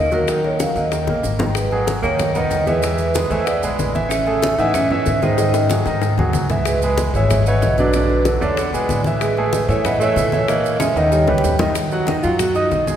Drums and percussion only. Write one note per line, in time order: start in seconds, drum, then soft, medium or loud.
0.11 high bongo soft
0.11 high conga medium
0.11 maracas soft
0.28 high bongo medium
0.28 maracas medium
0.44 high bongo soft
0.44 high conga soft
0.59 high bongo medium
0.59 high conga medium
0.59 maracas medium
0.76 high bongo soft
0.76 high conga soft
0.76 maracas soft
0.92 high bongo medium
0.92 high conga soft
0.92 maracas medium
1.07 high bongo medium
1.07 high conga medium
1.23 low bongo medium
1.23 low conga medium
1.23 maracas medium
1.39 low bongo medium
1.39 low conga medium
1.39 maracas soft
1.55 high bongo medium
1.55 high conga soft
1.55 maracas medium
1.71 high bongo soft
1.71 high conga soft
1.87 high bongo medium
1.87 high conga medium
1.87 maracas medium
2.03 high bongo soft
2.03 maracas soft
2.19 high bongo medium
2.19 high conga soft
2.19 low conga medium
2.19 maracas medium
2.35 high conga soft
2.35 low conga medium
2.35 maracas medium
2.51 high bongo soft
2.51 low bongo medium
2.51 high conga medium
2.51 maracas medium
2.67 high bongo soft
2.67 high conga medium
2.67 maracas soft
2.82 high bongo medium
2.82 high conga soft
2.82 maracas medium
2.98 high bongo soft
2.98 high conga soft
2.98 maracas medium
3.14 high bongo medium
3.14 high conga medium
3.14 maracas medium
3.31 high bongo soft
3.31 high conga soft
3.31 maracas soft
3.47 high bongo medium
3.47 high conga soft
3.47 maracas medium
3.63 high conga soft
3.63 maracas medium
3.79 high bongo soft
3.79 low bongo medium
3.79 high conga medium
3.79 maracas medium
3.95 high bongo soft
3.95 high conga medium
3.95 maracas soft
4.11 high bongo medium
4.11 high conga soft
4.11 maracas medium
4.27 high bongo soft
4.27 high conga soft
4.42 high bongo medium
4.42 high conga loud
4.42 maracas medium
4.58 high bongo soft
4.58 maracas soft
4.74 high bongo medium
4.74 high conga soft
4.74 low conga medium
4.74 maracas medium
4.91 high conga soft
4.91 low conga medium
5.06 high bongo soft
5.06 low bongo medium
5.06 high conga medium
5.06 maracas medium
5.22 high bongo soft
5.22 high conga medium
5.22 maracas soft
5.38 high bongo medium
5.38 high conga soft
5.38 maracas medium
5.54 high bongo medium
5.54 high conga soft
5.54 maracas medium
5.70 high bongo medium
5.70 high conga medium
5.70 maracas medium
5.86 low bongo medium
5.86 high conga soft
5.86 maracas soft
6.02 low bongo loud
6.02 high conga soft
6.02 maracas medium
6.18 low bongo medium
6.18 high conga loud
6.33 low bongo medium
6.33 high conga medium
6.33 maracas medium
6.50 low bongo medium
6.50 low conga medium
6.50 maracas soft
6.65 high bongo medium
6.65 high conga soft
6.65 maracas medium
6.82 high bongo soft
6.82 high conga soft
6.82 maracas medium
6.98 high bongo medium
6.98 high conga medium
6.98 maracas medium
7.14 high bongo soft
7.14 maracas soft
7.30 high bongo medium
7.30 high conga soft
7.30 low conga medium
7.30 maracas medium
7.46 high conga soft
7.46 maracas medium
7.62 high bongo soft
7.62 low bongo medium
7.62 high conga medium
7.62 maracas medium
7.78 high bongo soft
7.78 high conga medium
7.78 maracas soft
7.93 high bongo medium
7.93 maracas medium
8.09 high bongo soft
8.09 high conga soft
8.25 high bongo medium
8.25 high conga medium
8.25 maracas medium
8.42 high bongo soft
8.42 high conga soft
8.42 maracas soft
8.57 high bongo medium
8.57 high conga soft
8.57 maracas medium
8.73 high conga soft
8.73 maracas medium
8.89 high bongo soft
8.89 low bongo medium
8.89 high conga medium
8.89 maracas medium
9.04 high bongo soft
9.04 high conga medium
9.04 maracas soft
9.21 high bongo medium
9.21 high conga soft
9.21 maracas medium
9.37 high bongo soft
9.37 high conga soft
9.53 high bongo medium
9.53 high conga medium
9.53 maracas medium
9.69 high bongo soft
9.69 maracas soft
9.85 high bongo medium
9.85 high conga soft
9.85 low conga medium
9.85 maracas medium
10.00 high conga soft
10.00 maracas medium
10.16 high bongo soft
10.16 low bongo medium
10.16 high conga medium
10.16 maracas medium
10.32 high bongo soft
10.32 high conga medium
10.32 maracas soft
10.48 high bongo medium
10.48 high conga soft
10.48 maracas medium
10.64 high bongo soft
10.64 high conga soft
10.64 maracas medium
10.80 high bongo medium
10.80 high conga medium
10.80 maracas medium
10.96 high conga soft
10.96 maracas soft
11.12 low bongo medium
11.12 high conga soft
11.12 maracas medium
11.27 low bongo loud
11.27 high conga medium
11.38 high conga medium
11.44 low bongo medium
11.44 maracas medium
11.49 low conga medium
11.59 low bongo medium
11.59 low conga loud
11.59 maracas soft
11.75 high bongo medium
11.75 high conga soft
11.75 maracas medium
11.91 high conga soft
11.91 maracas soft
12.07 high bongo medium
12.07 high conga medium
12.07 maracas soft
12.23 high bongo soft
12.23 high conga soft
12.23 maracas medium
12.39 high bongo medium
12.39 high conga soft
12.39 low conga medium
12.39 maracas medium
12.55 high bongo soft
12.55 high conga soft
12.55 maracas soft
12.71 high bongo soft
12.71 low bongo medium
12.71 high conga medium
12.71 maracas soft
12.87 high bongo soft
12.87 high conga medium
12.87 maracas medium